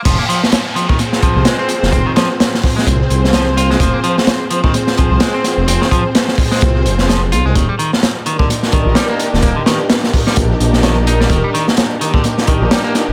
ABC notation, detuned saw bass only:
X:1
M:4/4
L:1/16
Q:"Swing 16ths" 1/4=128
K:Fdor
V:1 name="Detuned saw bass" clef=bass
F,,, z8 z2 C,, z3 F,,, | F,,, z6 z C,, z C,,4- C,, z | F,,, z8 z2 C,, z3 F,,, | F,,, z6 z C,,2 F,,,4 C,, C,, |
E,,, z8 z2 B,,, z3 E,,, | E,,, z6 z B,,, z B,,,4- B,,, z | E,,, z8 z2 B,,, z3 E,,, |]